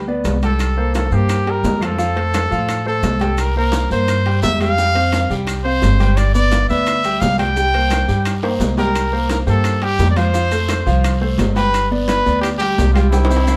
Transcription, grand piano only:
0.08 0.36 B3 medium
0.08 0.36 B4 medium
0.08 0.37 D5 medium
0.42 0.71 G3 medium
0.42 0.71 G4 medium
0.42 0.71 G5 medium
0.77 1.06 A#3 medium
0.77 1.06 A#4 medium
0.77 1.06 C5 medium
1.12 1.41 A#3 medium
1.12 1.41 A#4 medium
1.12 1.41 C5 medium
1.46 1.75 G3 medium
1.46 1.75 G4 medium
1.46 1.76 G5 medium
1.81 1.95 F3 medium
1.81 1.96 F4 medium
1.81 1.96 F5 medium
1.98 2.13 F3 medium
1.98 2.13 F4 medium
1.98 2.13 F5 medium
2.16 2.45 A3 medium
2.16 2.45 A4 medium
2.16 2.45 C5 medium
2.51 2.80 F3 medium
2.51 2.80 F4 medium
2.51 2.80 F5 medium
2.86 3.14 A3 medium
2.86 3.15 A4 medium
2.86 3.15 C5 medium
3.21 3.49 G3 medium
3.21 3.49 G4 medium
3.21 3.50 G5 medium
3.57 3.85 A#3 medium
3.57 3.85 A#4 medium
3.57 3.85 C5 medium
3.91 4.20 A#3 medium
3.91 4.20 A#4 medium
3.91 4.20 C5 medium
4.26 4.54 G3 medium
4.26 4.54 G4 medium
4.26 4.55 G5 medium
4.61 4.75 G3 medium
4.61 4.75 G4 medium
4.61 4.75 G5 medium
4.78 4.92 G3 medium
4.78 4.92 G4 medium
4.78 4.93 G5 medium
4.95 5.24 C4 medium
4.95 5.24 C5 medium
4.95 5.24 F5 medium
5.30 5.58 G3 medium
5.30 5.59 G4 medium
5.30 5.59 G5 medium
5.65 5.93 C4 medium
5.65 5.93 C5 medium
5.65 5.94 F5 medium
6.00 6.28 G3 medium
6.00 6.28 G4 medium
6.00 6.28 G5 medium
6.35 6.63 B3 medium
6.35 6.63 B4 medium
6.35 6.63 D5 medium
6.70 6.98 B3 medium
6.70 6.98 B4 medium
6.70 6.99 D5 medium
7.05 7.33 G3 medium
7.05 7.33 G4 medium
7.05 7.33 G5 medium
7.39 7.53 G3 medium
7.39 7.53 G4 medium
7.39 7.53 G5 medium
7.56 7.71 G3 medium
7.56 7.71 G4 medium
7.56 7.71 G5 medium
7.74 8.02 A#3 medium
7.74 8.03 A#4 medium
7.74 8.03 C5 medium
8.08 8.37 G3 medium
8.08 8.37 G4 medium
8.08 8.37 G5 medium
8.43 8.71 A#3 medium
8.43 8.72 A#4 medium
8.43 8.72 C5 medium
8.78 9.06 G3 medium
8.78 9.06 G4 medium
8.78 9.07 G5 medium
9.12 9.41 A#3 medium
9.12 9.41 A#4 medium
9.12 9.41 C5 medium
9.46 9.75 A#3 medium
9.46 9.75 G4 medium
9.46 9.76 C5 medium
9.82 10.11 G3 medium
9.82 10.11 G4 medium
9.82 10.11 G5 medium
10.16 10.31 F3 medium
10.16 10.31 F4 medium
10.16 10.31 F5 medium
10.34 10.48 F3 medium
10.34 10.49 F4 medium
10.34 10.49 F5 medium
10.51 10.80 A3 medium
10.51 10.80 A4 medium
10.51 10.80 C5 medium
10.86 11.15 F3 medium
10.86 11.15 F4 medium
10.86 11.15 F5 medium
11.21 11.50 A3 medium
11.21 11.50 A4 medium
11.21 11.50 C5 medium
11.56 11.85 G3 medium
11.56 11.85 G4 medium
11.56 11.85 G5 medium
11.91 12.20 B3 medium
11.91 12.20 B4 medium
11.91 12.20 D5 medium
12.26 12.54 B3 medium
12.26 12.55 B4 medium
12.26 12.55 D5 medium
12.61 12.89 G3 medium
12.61 12.90 G4 medium
12.61 12.90 G5 medium
12.96 13.10 G3 medium
12.96 13.10 G4 medium
12.96 13.10 G5 medium
13.12 13.27 G3 medium
13.12 13.27 G4 medium
13.12 13.28 G5 medium
13.30 13.56 C4 medium
13.30 13.56 C5 medium
13.30 13.56 E5 medium

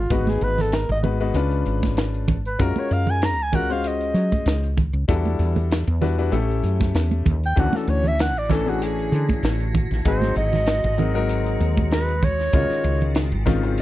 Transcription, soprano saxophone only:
0.00 0.14 F4 medium
0.13 0.31 F#4 medium
0.29 0.45 G#4 medium
0.43 0.63 B4 medium
0.61 0.76 A4 medium
0.75 0.91 A#4 medium
0.92 1.00 D#5 medium
2.47 2.64 B4 medium
2.62 2.81 A#4 medium
2.79 2.94 C#5 medium
2.93 3.12 F5 medium
3.10 3.27 G#5 medium
3.25 3.44 A#5 medium
3.43 3.57 G#5 medium
3.55 3.74 F#5 medium
3.73 3.89 F5 medium
3.87 4.79 D#5 medium
7.46 7.61 G5 medium
7.60 7.78 F#5 medium
7.77 7.91 A4 medium
7.90 8.09 C#5 medium
8.07 8.23 E5 medium
8.21 8.40 F#5 loud
8.38 8.54 D5 medium
8.52 8.70 A4 medium
8.69 8.84 F#4 medium
8.83 9.45 G#4 medium
10.08 10.36 C5 medium
10.38 11.26 D#5 loud
11.94 12.25 B4 medium
12.24 13.17 C#5 medium

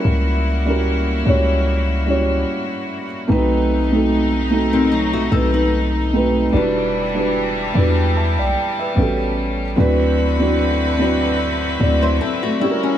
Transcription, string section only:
0.00 3.26 A#3 medium
0.00 3.25 E4 medium
0.00 3.25 F#4 medium
3.29 6.50 B2 medium
3.29 6.50 A3 medium
3.29 6.50 D#4 medium
6.54 8.95 E3 medium
6.54 9.75 G3 medium
6.54 8.95 D4 medium
6.54 8.95 E4 medium
8.97 9.77 A3 medium
8.97 9.77 C#4 medium
9.77 12.59 D3 medium
9.77 12.59 C4 medium
9.77 12.98 E4 medium
9.77 12.59 F#4 medium
9.77 12.59 B4 medium
12.62 12.98 A#3 medium
12.62 12.98 F#4 medium

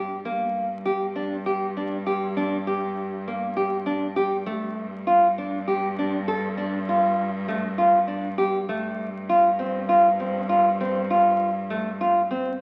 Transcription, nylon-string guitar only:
0.00 0.15 G4 medium
0.25 0.65 A#3 medium
0.85 1.06 G4 medium
1.16 1.36 D4 medium
1.46 1.66 G4 medium
1.77 1.97 D4 medium
2.06 2.26 G4 medium
2.37 2.56 D4 medium
2.67 3.07 G4 medium
3.28 3.47 A#3 medium
3.57 3.77 G4 medium
3.86 4.06 D4 medium
4.16 4.36 G4 medium
4.46 4.86 A3 medium
5.07 5.27 F4 medium
5.38 5.58 D4 medium
5.68 5.87 G4 medium
5.99 6.18 D4 medium
6.28 6.48 A4 medium
6.57 6.77 D4 medium
6.89 7.28 F4 medium
7.48 7.68 A3 medium
7.78 7.98 F4 medium
8.07 8.28 D4 medium
8.38 8.58 G4 medium
8.69 9.08 A3 medium
9.29 9.49 F4 medium
9.59 9.79 C4 medium
9.89 10.09 F4 medium
10.20 10.39 C4 medium
10.49 10.69 F4 medium
10.80 11.00 C4 medium
11.10 11.50 F4 medium
11.70 11.90 A3 medium
12.01 12.20 F4 medium
12.31 12.50 C4 medium

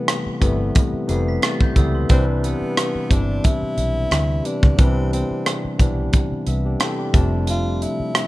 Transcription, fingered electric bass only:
0.26 muted fingered electric bass stroke soft
0.42 0.70 G1 medium
0.93 muted fingered electric bass stroke soft
1.09 1.37 F1 medium
1.76 2.04 C#2 medium
2.10 2.53 C2 medium
2.61 muted fingered electric bass stroke soft
2.95 muted fingered electric bass stroke soft
3.11 3.39 G1 medium
3.62 muted fingered electric bass stroke soft
3.77 4.06 B1 medium
4.11 4.39 D2 medium
4.63 4.76 C#2 medium
4.79 5.22 C2 medium
5.30 muted fingered electric bass stroke soft
5.65 muted fingered electric bass stroke soft
5.80 6.08 B1 medium
6.32 muted fingered electric bass stroke soft
6.47 6.75 C2 medium
7.14 7.85 F1 medium
8.00 muted fingered electric bass stroke soft

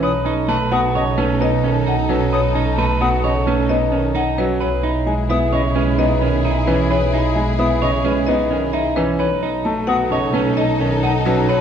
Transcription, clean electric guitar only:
0.03 0.33 B4 medium
0.26 0.56 D#4 medium
0.49 0.79 B4 medium
0.72 1.02 F#4 medium
0.95 1.25 C#5 medium
1.18 1.48 C#4 medium
1.41 1.71 D#4 medium
1.64 1.93 C#4 medium
1.87 2.16 D#4 medium
2.10 2.39 C#4 medium
2.33 2.62 B4 medium
2.55 2.85 D#4 medium
2.78 3.08 B4 medium
3.01 3.31 F#4 medium
3.24 3.54 C#5 medium
3.47 3.77 C#4 medium
3.70 3.99 D#4 medium
3.92 4.22 C#4 medium
4.15 4.45 D#4 medium
4.38 4.68 C#4 medium
4.60 4.91 B4 medium
4.83 5.14 D#4 medium
5.30 5.60 E4 medium
5.53 5.83 C#5 medium
5.76 6.06 C#4 medium
5.98 6.28 D#4 medium
6.22 6.51 C#4 medium
6.45 6.74 D#4 medium
6.68 6.97 C#4 medium
6.90 7.20 B4 medium
7.13 7.43 D#4 medium
7.59 7.89 E4 medium
7.82 8.12 C#5 medium
8.05 8.35 C#4 medium
8.28 8.57 D#4 medium
8.51 8.80 C#4 medium
8.73 9.03 D#4 medium
8.97 9.26 C#4 medium
9.20 9.49 B4 medium
9.43 9.72 D#4 medium
9.89 10.18 F#4 medium
10.12 10.41 C#5 medium
10.35 10.64 C#4 medium
10.57 10.87 D#4 medium
10.81 11.10 C#4 medium
11.03 11.33 D#4 medium
11.26 11.55 C#4 medium
11.49 11.61 B4 medium

